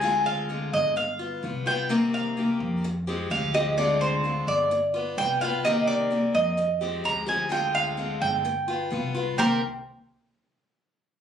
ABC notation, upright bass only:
X:1
M:4/4
L:1/8
Q:1/4=128
K:Cm
V:1 name="Upright bass" clef=bass
D,,3 G,,,3 C,,2- | C,,3 F,,3 D,,2- | D,,3 G,,,3 C,,2- | C,,3 F,,3 D,,2- |
D,,3 G,,,3 C,,2 | C,, z6 z |]